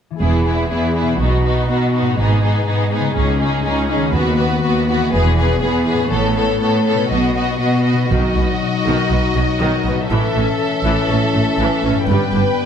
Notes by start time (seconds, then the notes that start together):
0.10 E3 B3 E4
0.16 G#4
0.20 E1 E2 B3 E4 G#4
0.46 B3 E4 G#4
0.70 E2 B3 E4 G#4
0.95 B3 E4 G#4
1.02 B2
1.07 B3
1.11 D#4
1.16 F#4
1.21 B1 B2 B3 D#4
1.45 B3 D#4 F#4
1.69 B2 B3 D#4 F#4
1.94 B3 D#4 F#4
2.00 G#2
2.05 B3
2.09 D#4
2.14 G#4
2.19 G#1 G#2 B3 D#4 G#4
2.43 B3 D#4 G#4
2.67 G#2 B3 D#4 G#4
2.92 B3 D#4 G#4
2.99 C#3
3.03 C#4
3.08 D#4
3.12 G#4
3.16 C#2 C#4 D#4
3.40 C#4 D#4 G#4
3.65 C#2 C#4 D#4 G#4
3.90 C#4 D#4 G#4
3.96 D#3
4.01 B3
4.05 F#4
4.10 B4
4.15 D#2 B3 F#4 B4
4.39 B3 F#4 B4
4.64 D#2 B3 F#4 B4
4.89 B3 F#4 B4
4.95 E3
5.00 B3
5.04 G#4
5.09 B4
5.13 E1 E2 B3 G#4 B4
5.38 B3 G#4 B4
5.63 E2 B3 G#4 B4
5.87 B3 G#4 B4
5.94 A2
5.98 C#4
6.02 A4
6.07 B4 C#5
6.12 A1 A2 B3 A4
6.37 B3 A4 C#5
6.61 A2 B3 A4 C#5
6.86 B3 A4 C#5
6.93 B2
6.97 D#4
7.02 F#4
7.06 F#4 B4
7.11 B1 B2 B3 D#5
7.36 B3 F#4 D#5
7.61 B2 B3 F#4 D#5
7.86 B3 F#4 D#5
7.93 B2
7.97 D#4
8.02 F#4
8.06 B4 D#5
8.11 B1 B2 D#3 F#3 D#4 F#4
8.36 B1 B2 B3
8.86 B1 B2 D#3
9.11 B1 B2 B3
9.36 B1 B2 F#3
9.60 B1 B2 D#3
9.85 B1 B2 B3
9.92 A2
9.96 E4
10.01 A4
10.05 C#5
10.11 A1 A2 E3 C#4 A4 E5
10.35 A1 A2 C#4
10.85 A1 A2 E3
11.10 A1 A2 C#4
11.35 A1 A2 A3
11.59 A1 A2 E3
11.83 A1 A2 C#4
11.90 G2
11.95 B3
11.99 B4
12.04 D5
12.08 G1 G2 G3 B3 B4 G5
12.33 G1 G2 D4